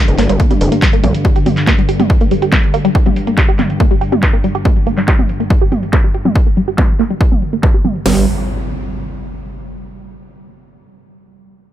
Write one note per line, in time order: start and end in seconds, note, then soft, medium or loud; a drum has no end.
0.00 8.10 G2 medium
0.00 8.10 D3 medium
0.08 0.16 F1 medium
0.08 closed hi-hat medium
0.18 0.27 G1 medium
0.18 0.23 A#3 medium
0.18 clap soft
0.18 open hi-hat loud
0.29 0.37 G1 medium
0.29 0.33 G3 medium
0.29 closed hi-hat medium
0.40 0.46 A#3 medium
0.40 kick loud
0.40 closed hi-hat medium
0.51 0.53 G3 medium
0.51 closed hi-hat medium
0.51 mid tom medium
0.61 0.69 F1 medium
0.61 open hi-hat loud
0.72 0.76 A#3 medium
0.72 closed hi-hat medium
0.82 0.86 G3 medium
0.82 kick loud
0.82 clap loud
0.82 closed hi-hat medium
0.93 0.99 A#3 medium
0.93 closed hi-hat medium
1.04 1.12 A#1 loud
1.04 1.06 G3 medium
1.04 mid tom medium
1.04 open hi-hat loud
1.14 closed hi-hat medium
1.25 1.29 G3 medium
1.25 kick loud
1.25 closed hi-hat medium
1.36 1.38 G4 medium
1.36 closed hi-hat medium
1.46 1.49 G3 medium
1.46 mid tom medium
1.46 open hi-hat loud
1.57 clap soft
1.57 closed hi-hat medium
1.67 1.72 A#3 medium
1.67 kick loud
1.67 clap loud
1.67 closed hi-hat medium
1.78 1.82 G3 medium
1.78 closed hi-hat medium
1.89 1.91 G4 medium
1.89 open hi-hat loud
2.00 2.02 G3 medium
2.00 closed hi-hat medium
2.00 mid tom medium
2.10 kick loud
2.10 closed hi-hat medium
2.21 2.25 A#3 medium
2.21 closed hi-hat medium
2.31 2.35 G3 medium
2.31 open hi-hat loud
2.42 2.45 G4 medium
2.42 closed hi-hat medium
2.52 2.55 G3 medium
2.52 kick loud
2.52 clap loud
2.52 closed hi-hat medium
2.52 mid tom medium
2.63 closed hi-hat soft
2.74 2.78 A#3 medium
2.74 open hi-hat loud
2.85 2.89 G3 medium
2.85 closed hi-hat medium
2.95 2.98 G4 medium
2.95 kick loud
2.95 closed hi-hat medium
3.06 3.08 G3 medium
3.06 closed hi-hat medium
3.06 mid tom medium
3.16 open hi-hat loud
3.27 3.31 A#3 medium
3.27 closed hi-hat medium
3.38 3.42 G3 medium
3.38 kick loud
3.38 clap loud
3.49 3.51 G4 medium
3.49 closed hi-hat medium
3.59 3.61 G3 medium
3.59 clap soft
3.59 mid tom medium
3.59 open hi-hat loud
3.70 closed hi-hat medium
3.80 3.84 A#3 medium
3.80 kick loud
3.80 closed hi-hat medium
3.91 3.95 G3 medium
3.91 closed hi-hat medium
4.01 4.04 G4 medium
4.01 open hi-hat loud
4.12 4.15 G3 medium
4.12 closed hi-hat medium
4.12 mid tom medium
4.23 kick loud
4.23 clap loud
4.33 4.38 A#3 medium
4.33 closed hi-hat medium
4.44 4.48 G3 medium
4.44 open hi-hat loud
4.55 4.57 G4 medium
4.55 closed hi-hat medium
4.65 4.68 G3 medium
4.65 kick loud
4.65 closed hi-hat medium
4.65 mid tom medium
4.76 closed hi-hat medium
4.87 4.91 A#3 medium
4.87 open hi-hat loud
4.98 5.02 G3 medium
4.98 clap soft
4.98 closed hi-hat medium
5.08 5.10 G4 medium
5.08 kick loud
5.08 clap loud
5.19 5.21 G3 medium
5.19 closed hi-hat medium
5.19 mid tom medium
5.29 open hi-hat loud
5.40 5.44 A#3 medium
5.40 closed hi-hat medium
5.50 5.55 G3 medium
5.50 kick loud
5.50 closed hi-hat medium
5.61 5.64 G4 medium
5.61 closed hi-hat medium
5.72 5.74 G3 medium
5.72 mid tom medium
5.72 open hi-hat loud
5.83 closed hi-hat medium
5.93 5.97 A#3 medium
5.93 kick loud
5.93 clap loud
6.04 6.08 G3 medium
6.04 closed hi-hat medium
6.14 6.17 G4 medium
6.14 open hi-hat loud
6.25 6.28 G3 medium
6.25 closed hi-hat medium
6.25 mid tom medium
6.36 kick loud
6.46 6.50 A#3 medium
6.46 closed hi-hat medium
6.57 6.61 G3 medium
6.57 open hi-hat loud
6.68 6.70 G4 medium
6.68 closed hi-hat medium
6.78 6.81 G3 medium
6.78 kick loud
6.78 clap loud
6.78 mid tom medium
6.89 closed hi-hat medium
6.99 7.04 A#3 medium
6.99 clap soft
6.99 open hi-hat loud
7.10 7.14 G3 medium
7.10 closed hi-hat medium
7.21 7.23 G4 medium
7.21 kick loud
7.32 7.34 G3 medium
7.32 closed hi-hat medium
7.32 mid tom medium
7.42 open hi-hat loud
7.53 7.57 A#3 medium
7.53 closed hi-hat medium
7.63 7.67 G3 medium
7.63 kick loud
7.63 clap loud
7.74 7.77 G4 medium
7.74 closed hi-hat medium
7.85 7.87 G3 medium
7.85 mid tom medium
7.85 open hi-hat loud
7.95 closed hi-hat medium
8.06 8.26 G1 medium
8.06 8.26 G3 loud
8.06 snare loud
8.06 open hi-hat medium
8.06 impact medium